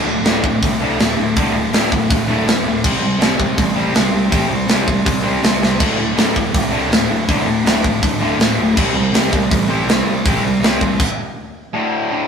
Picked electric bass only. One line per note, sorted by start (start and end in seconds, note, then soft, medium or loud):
0.05 0.22 D1 medium
0.24 0.41 D1 loud
0.43 0.60 D1 medium
0.62 0.95 C2 loud
0.99 1.16 D1 loud
1.17 1.34 D1 medium
1.36 1.53 C2 medium
1.53 1.70 D1 medium
1.71 1.89 D1 medium
1.92 2.08 D1 medium
2.10 2.26 D1 loud
2.26 2.44 D1 medium
2.46 2.63 D1 loud
2.63 2.81 D1 medium
2.84 3.00 C2 loud
3.00 3.18 C2 medium
3.19 3.36 C2 loud
3.39 3.56 C2 medium
3.58 3.91 A1 loud
3.93 4.10 C2 loud
4.11 4.29 C2 loud
4.32 4.48 A1 medium
4.48 4.66 C2 medium
4.67 4.85 C2 medium
4.88 5.04 C2 medium
5.06 5.22 C2 loud
5.23 5.40 C2 medium
5.42 5.59 C2 medium
5.60 5.77 C2 medium
5.80 5.97 D1 medium
5.97 6.15 D1 medium
6.15 6.33 D1 medium
6.36 6.53 D1 medium
6.54 6.88 C2 loud
6.89 7.07 D1 medium
7.09 7.26 D1 loud
7.29 7.44 C2 medium
7.45 7.62 D1 medium
7.63 7.81 D1 loud
7.84 8.01 D1 medium
8.02 8.18 D1 loud
8.18 8.36 D1 medium
8.37 8.55 D1 medium
8.56 8.74 D1 loud
8.77 8.92 C2 medium
8.93 9.11 C2 medium
9.12 9.30 C2 medium
9.32 9.49 C2 medium
9.51 9.85 A1 loud
9.86 10.03 C2 medium
10.04 10.22 C2 loud
10.26 10.40 A1 loud
10.41 10.59 C2 medium
10.60 10.78 C2 loud
10.81 10.98 C2 medium